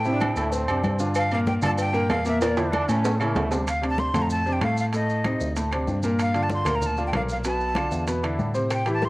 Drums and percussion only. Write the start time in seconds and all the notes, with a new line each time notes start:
0.05 high conga, maracas
0.20 cowbell, high conga, low agogo, claves, maracas
0.36 cowbell, low agogo, maracas
0.52 cowbell, high conga, maracas
0.68 high conga, low agogo, claves, maracas
0.84 cowbell, high conga, low agogo, maracas
0.99 cowbell, maracas
1.15 cowbell, high conga, low agogo, claves, maracas
1.31 high conga, low agogo, maracas
1.46 cowbell, high conga, maracas
1.62 cowbell, low conga, low agogo, claves, maracas
1.78 cowbell, low agogo, maracas
1.94 cowbell, high conga, maracas
2.09 cowbell, high conga, low timbale, low agogo, claves, maracas
2.25 cowbell, maracas
2.41 cowbell, high timbale, low agogo, maracas
2.57 high conga, high timbale, maracas
2.72 cowbell, high conga, low agogo, claves, maracas
2.89 cowbell, low agogo, maracas
3.04 cowbell, high conga, low timbale, maracas
3.20 high conga, low agogo, claves, maracas
3.35 cowbell, high conga, low timbale, low agogo, maracas
3.52 cowbell, low timbale, maracas
3.67 high conga, high timbale, claves, maracas
3.83 high conga, high timbale, maracas
3.98 high conga, maracas
4.14 low conga, high timbale, claves, maracas
4.30 high conga, maracas
4.46 high conga, maracas
4.61 high conga, high timbale, claves, maracas
4.77 maracas
4.93 high conga, high timbale, maracas
5.09 high conga, maracas
5.24 high conga, high timbale, claves, maracas
5.40 maracas
5.56 high conga, high timbale, maracas
5.71 high conga, high timbale, claves, maracas
5.87 high conga, maracas
6.03 high conga, maracas
6.18 high conga, high timbale, claves, maracas
6.34 high conga, high timbale, maracas
6.50 high conga, maracas
6.65 low conga, high timbale, claves, maracas
6.81 high conga, low conga, maracas
6.97 high conga, maracas
7.13 high conga, high timbale, claves, maracas
7.29 maracas
7.44 high conga, high timbale, maracas
7.60 high conga, maracas
7.75 high conga, high timbale, claves, maracas
7.92 maracas
8.07 high conga, high timbale, maracas
8.23 high conga, high timbale, claves, maracas
8.39 high conga, maracas
8.55 maracas
8.70 high bongo, high conga, high timbale, claves, maracas
8.86 high bongo, high conga, high timbale, maracas
9.02 high bongo, high conga, maracas